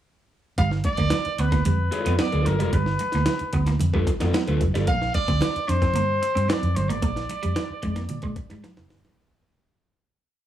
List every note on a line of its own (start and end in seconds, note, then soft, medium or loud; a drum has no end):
0.58 0.80 G1 loud
0.58 0.67 G3 medium
0.58 0.70 F5 loud
0.58 kick medium
0.58 closed hi-hat medium
0.58 muted conga medium
0.71 snare soft
0.84 1.42 D5 loud
0.84 muted clean electric guitar stroke soft
0.84 kick medium
0.84 closed hi-hat medium
0.84 muted conga medium
0.97 1.10 D2 medium
0.97 1.08 A#3 medium
0.97 kick loud
0.97 closed hi-hat soft
1.10 muted clean electric guitar stroke soft
1.10 snare loud
1.10 closed hi-hat loud
1.10 high conga medium
1.25 muted fingered electric bass stroke soft
1.25 closed hi-hat soft
1.38 1.61 D2 medium
1.38 1.47 B3 medium
1.38 1.65 B4 medium
1.38 closed hi-hat medium
1.52 1.61 A#3 medium
1.52 kick medium
1.52 snare soft
1.52 closed hi-hat medium
1.65 1.88 F2 loud
1.65 1.74 G3 medium
1.65 2.16 B4 medium
1.65 closed hi-hat loud
1.65 muted conga soft
1.65 low conga medium
1.92 2.12 F4 medium
1.92 2.12 A4 medium
1.92 2.12 D5 medium
1.92 muted clean electric guitar stroke soft
1.92 closed hi-hat medium
2.06 2.17 F2 medium
2.06 2.15 B3 medium
2.06 closed hi-hat medium
2.19 2.28 B3 medium
2.19 2.48 D5 medium
2.19 snare loud
2.19 closed hi-hat medium
2.19 high conga medium
2.32 2.44 D2 medium
2.32 2.53 F4 medium
2.32 2.53 A4 medium
2.32 2.52 B4 medium
2.32 closed hi-hat soft
2.46 2.61 G1 medium
2.46 2.75 A#4 medium
2.46 muted clean electric guitar stroke soft
2.46 closed hi-hat medium
2.46 high conga medium
2.59 2.72 F1 medium
2.59 2.68 G3 medium
2.59 2.70 F4 medium
2.59 2.69 A4 medium
2.59 2.69 D5 medium
2.59 closed hi-hat medium
2.73 2.95 G1 loud
2.73 2.82 G3 medium
2.73 3.80 B4 medium
2.73 kick loud
2.73 closed hi-hat medium
2.73 muted conga medium
2.86 snare soft
2.99 muted clean electric guitar stroke soft
2.99 closed hi-hat medium
2.99 muted conga medium
3.12 3.25 D2 medium
3.12 3.23 A#3 medium
3.12 snare soft
3.12 closed hi-hat soft
3.26 muted clean electric guitar stroke soft
3.26 snare loud
3.26 closed hi-hat loud
3.26 high conga medium
3.39 muted fingered electric bass stroke medium
3.39 closed hi-hat soft
3.53 3.76 D2 medium
3.53 3.62 B3 medium
3.53 kick loud
3.53 closed hi-hat medium
3.67 3.76 A#3 medium
3.67 snare soft
3.67 closed hi-hat soft
3.79 4.03 F2 loud
3.79 closed hi-hat loud
3.79 muted conga medium
3.79 low conga medium
3.94 4.03 G3 medium
3.94 4.07 F4 medium
3.94 4.06 A4 medium
3.94 4.06 B4 medium
3.94 kick medium
4.07 muted clean electric guitar stroke soft
4.07 kick loud
4.07 closed hi-hat medium
4.07 muted conga soft
4.20 4.32 F2 medium
4.20 4.29 B3 medium
4.20 4.31 F4 medium
4.20 4.30 A4 medium
4.20 4.30 D5 medium
4.20 snare soft
4.20 closed hi-hat medium
4.33 4.42 B3 medium
4.33 snare loud
4.33 closed hi-hat medium
4.33 high conga medium
4.47 4.59 D2 medium
4.47 4.61 F4 medium
4.47 4.60 A4 medium
4.47 4.60 B4 medium
4.47 muted clean electric guitar stroke soft
4.47 closed hi-hat soft
4.61 4.72 F1 medium
4.61 kick medium
4.61 closed hi-hat medium
4.61 high conga medium
4.74 4.86 G1 medium
4.74 4.83 G3 medium
4.74 4.85 F4 soft
4.74 4.84 A4 medium
4.74 4.84 D5 medium
4.74 snare soft
4.74 closed hi-hat medium
4.87 5.10 A#1 loud
4.87 4.96 A#3 medium
4.87 5.12 F5 loud
4.87 kick loud
4.87 closed hi-hat medium
4.87 muted conga medium
5.02 snare soft
5.14 5.70 D5 loud
5.14 muted clean electric guitar stroke soft
5.14 kick medium
5.14 closed hi-hat medium
5.14 muted conga medium
5.28 5.39 D2 medium
5.28 5.36 C4 medium
5.28 kick medium
5.28 closed hi-hat soft
5.41 muted clean electric guitar stroke soft
5.41 snare loud
5.41 closed hi-hat loud
5.41 high conga medium
5.56 muted fingered electric bass stroke medium
5.56 closed hi-hat soft
5.68 5.96 F2 medium
5.68 5.77 D4 medium
5.68 6.51 C5 loud
5.68 closed hi-hat medium
5.82 5.90 C4 medium
5.82 kick loud
5.82 snare soft
5.82 closed hi-hat soft
5.94 6.18 G2 medium
5.94 6.04 A#3 medium
5.94 closed hi-hat loud
5.94 muted conga medium
5.94 low conga medium
6.22 muted clean electric guitar stroke soft
6.22 closed hi-hat medium
6.35 6.47 G2 medium
6.35 6.44 C4 medium
6.35 closed hi-hat medium
6.49 6.58 C4 medium
6.49 6.77 D5 medium
6.49 snare loud
6.49 closed hi-hat medium
6.49 high conga medium
6.63 6.74 F2 medium
6.63 closed hi-hat soft
6.76 6.90 G1 loud
6.76 6.90 C5 medium
6.76 muted clean electric guitar stroke soft
6.76 closed hi-hat medium
6.76 high conga medium
6.89 7.03 G#1 loud
6.89 6.98 A#3 medium
6.89 8.64 D5 medium
6.89 closed hi-hat medium
7.02 7.25 A#1 loud
7.02 7.11 A#3 medium
7.02 kick loud
7.02 closed hi-hat medium
7.02 muted conga medium
7.16 snare soft
7.16 closed hi-hat soft
7.29 muted clean electric guitar stroke soft
7.29 closed hi-hat medium
7.29 muted conga soft
7.43 7.55 F2 medium
7.43 7.51 G3 medium
7.43 closed hi-hat medium
7.56 muted clean electric guitar stroke soft
7.56 snare loud
7.56 closed hi-hat loud
7.56 high conga medium
7.70 muted fingered electric bass stroke soft
7.83 8.06 F2 medium
7.83 7.92 G#3 medium
7.83 kick medium
7.83 closed hi-hat medium
7.96 8.05 A#3 medium
7.96 snare soft
7.96 closed hi-hat medium
8.09 8.22 A#2 medium
8.09 closed hi-hat loud
8.09 muted conga soft
8.09 low conga medium
8.22 8.35 A#2 loud
8.22 8.32 G#3 medium
8.22 kick medium
8.22 closed hi-hat soft
8.36 muted clean electric guitar stroke soft
8.36 kick loud
8.36 closed hi-hat medium
8.50 8.62 G#2 medium
8.50 8.60 G3 medium
8.50 snare soft
8.50 closed hi-hat medium
8.64 8.72 F3 medium
8.64 snare medium
8.64 closed hi-hat medium
8.64 high conga medium
8.77 8.89 F1 medium
8.77 muted clean electric guitar stroke soft
8.77 snare medium
8.77 closed hi-hat soft
8.90 9.02 G1 medium
8.90 snare medium
8.90 open hi-hat medium
8.90 high conga medium
9.05 9.16 G#1 loud
9.05 9.14 F3 medium
9.05 snare medium
9.05 closed hi-hat medium